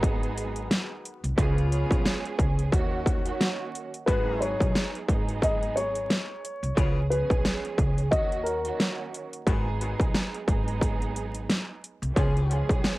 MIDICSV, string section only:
0, 0, Header, 1, 2, 480
1, 0, Start_track
1, 0, Tempo, 674157
1, 980, Time_signature, 4, 2, 24, 8
1, 9245, End_track
2, 0, Start_track
2, 0, Title_t, "String section"
2, 0, Program_c, 0, 48
2, 0, Note_on_c, 0, 54, 99
2, 0, Note_on_c, 0, 56, 102
2, 0, Note_on_c, 0, 59, 102
2, 0, Note_on_c, 0, 63, 100
2, 0, Note_on_c, 0, 68, 107
2, 672, Note_off_c, 0, 54, 0
2, 674, Note_off_c, 0, 56, 0
2, 676, Note_off_c, 0, 59, 0
2, 678, Note_off_c, 0, 63, 0
2, 680, Note_off_c, 0, 68, 0
2, 960, Note_on_c, 0, 53, 92
2, 964, Note_on_c, 0, 56, 83
2, 968, Note_on_c, 0, 59, 91
2, 972, Note_on_c, 0, 61, 85
2, 976, Note_on_c, 0, 68, 111
2, 1194, Note_off_c, 0, 53, 0
2, 1196, Note_off_c, 0, 56, 0
2, 1198, Note_off_c, 0, 59, 0
2, 1200, Note_off_c, 0, 61, 0
2, 1202, Note_off_c, 0, 68, 0
2, 1209, Note_on_c, 0, 53, 96
2, 1213, Note_on_c, 0, 56, 92
2, 1218, Note_on_c, 0, 59, 86
2, 1221, Note_on_c, 0, 61, 92
2, 1225, Note_on_c, 0, 68, 110
2, 1927, Note_on_c, 0, 51, 100
2, 1931, Note_off_c, 0, 61, 0
2, 1931, Note_on_c, 0, 54, 94
2, 1935, Note_off_c, 0, 53, 0
2, 1935, Note_on_c, 0, 58, 83
2, 1937, Note_off_c, 0, 56, 0
2, 1939, Note_off_c, 0, 59, 0
2, 1939, Note_on_c, 0, 61, 83
2, 1943, Note_off_c, 0, 68, 0
2, 1943, Note_on_c, 0, 66, 114
2, 2278, Note_off_c, 0, 51, 0
2, 2280, Note_off_c, 0, 54, 0
2, 2282, Note_off_c, 0, 58, 0
2, 2284, Note_off_c, 0, 61, 0
2, 2286, Note_off_c, 0, 66, 0
2, 2312, Note_on_c, 0, 51, 101
2, 2316, Note_on_c, 0, 54, 91
2, 2320, Note_on_c, 0, 58, 87
2, 2324, Note_on_c, 0, 61, 95
2, 2328, Note_on_c, 0, 66, 105
2, 2751, Note_off_c, 0, 51, 0
2, 2753, Note_off_c, 0, 54, 0
2, 2755, Note_off_c, 0, 58, 0
2, 2757, Note_off_c, 0, 61, 0
2, 2759, Note_off_c, 0, 66, 0
2, 2904, Note_on_c, 0, 54, 95
2, 2908, Note_on_c, 0, 56, 92
2, 2912, Note_on_c, 0, 59, 87
2, 2916, Note_on_c, 0, 63, 94
2, 2920, Note_on_c, 0, 68, 110
2, 3573, Note_off_c, 0, 54, 0
2, 3575, Note_off_c, 0, 56, 0
2, 3577, Note_off_c, 0, 59, 0
2, 3579, Note_off_c, 0, 63, 0
2, 3581, Note_off_c, 0, 68, 0
2, 3614, Note_on_c, 0, 54, 96
2, 3618, Note_on_c, 0, 56, 100
2, 3622, Note_on_c, 0, 59, 96
2, 3626, Note_on_c, 0, 63, 96
2, 3630, Note_on_c, 0, 68, 102
2, 4512, Note_off_c, 0, 54, 0
2, 4514, Note_off_c, 0, 56, 0
2, 4516, Note_off_c, 0, 59, 0
2, 4518, Note_off_c, 0, 63, 0
2, 4520, Note_off_c, 0, 68, 0
2, 4800, Note_on_c, 0, 53, 87
2, 4804, Note_on_c, 0, 56, 81
2, 4808, Note_on_c, 0, 59, 83
2, 4812, Note_on_c, 0, 61, 82
2, 4816, Note_on_c, 0, 68, 107
2, 5034, Note_off_c, 0, 53, 0
2, 5036, Note_off_c, 0, 56, 0
2, 5038, Note_off_c, 0, 59, 0
2, 5040, Note_off_c, 0, 61, 0
2, 5042, Note_off_c, 0, 68, 0
2, 5048, Note_on_c, 0, 53, 91
2, 5052, Note_on_c, 0, 56, 89
2, 5056, Note_on_c, 0, 59, 82
2, 5060, Note_on_c, 0, 61, 90
2, 5064, Note_on_c, 0, 68, 113
2, 5766, Note_on_c, 0, 51, 97
2, 5769, Note_off_c, 0, 61, 0
2, 5770, Note_on_c, 0, 54, 91
2, 5774, Note_off_c, 0, 53, 0
2, 5774, Note_on_c, 0, 58, 82
2, 5776, Note_off_c, 0, 56, 0
2, 5778, Note_off_c, 0, 59, 0
2, 5778, Note_on_c, 0, 61, 84
2, 5782, Note_off_c, 0, 68, 0
2, 5782, Note_on_c, 0, 66, 112
2, 6117, Note_off_c, 0, 51, 0
2, 6120, Note_off_c, 0, 54, 0
2, 6121, Note_off_c, 0, 58, 0
2, 6123, Note_off_c, 0, 61, 0
2, 6125, Note_off_c, 0, 66, 0
2, 6150, Note_on_c, 0, 51, 100
2, 6154, Note_on_c, 0, 54, 89
2, 6158, Note_on_c, 0, 58, 87
2, 6163, Note_on_c, 0, 61, 90
2, 6166, Note_on_c, 0, 66, 98
2, 6590, Note_off_c, 0, 51, 0
2, 6592, Note_off_c, 0, 54, 0
2, 6594, Note_off_c, 0, 58, 0
2, 6596, Note_off_c, 0, 61, 0
2, 6598, Note_off_c, 0, 66, 0
2, 6745, Note_on_c, 0, 54, 90
2, 6749, Note_on_c, 0, 56, 95
2, 6753, Note_on_c, 0, 59, 89
2, 6757, Note_on_c, 0, 63, 95
2, 6761, Note_on_c, 0, 68, 107
2, 7413, Note_off_c, 0, 54, 0
2, 7415, Note_off_c, 0, 56, 0
2, 7417, Note_off_c, 0, 59, 0
2, 7419, Note_off_c, 0, 63, 0
2, 7421, Note_off_c, 0, 68, 0
2, 7454, Note_on_c, 0, 54, 97
2, 7458, Note_on_c, 0, 56, 101
2, 7462, Note_on_c, 0, 59, 100
2, 7466, Note_on_c, 0, 63, 99
2, 7470, Note_on_c, 0, 68, 104
2, 8352, Note_off_c, 0, 54, 0
2, 8353, Note_off_c, 0, 56, 0
2, 8356, Note_off_c, 0, 59, 0
2, 8358, Note_off_c, 0, 63, 0
2, 8360, Note_off_c, 0, 68, 0
2, 8640, Note_on_c, 0, 53, 89
2, 8644, Note_on_c, 0, 56, 82
2, 8648, Note_on_c, 0, 59, 84
2, 8652, Note_on_c, 0, 61, 84
2, 8656, Note_on_c, 0, 68, 106
2, 8874, Note_off_c, 0, 53, 0
2, 8876, Note_off_c, 0, 56, 0
2, 8878, Note_off_c, 0, 59, 0
2, 8880, Note_off_c, 0, 61, 0
2, 8882, Note_off_c, 0, 68, 0
2, 8888, Note_on_c, 0, 53, 89
2, 8892, Note_on_c, 0, 56, 91
2, 8897, Note_on_c, 0, 59, 87
2, 8901, Note_on_c, 0, 61, 88
2, 8905, Note_on_c, 0, 68, 109
2, 9245, Note_off_c, 0, 53, 0
2, 9245, Note_off_c, 0, 56, 0
2, 9245, Note_off_c, 0, 59, 0
2, 9245, Note_off_c, 0, 61, 0
2, 9245, Note_off_c, 0, 68, 0
2, 9245, End_track
0, 0, End_of_file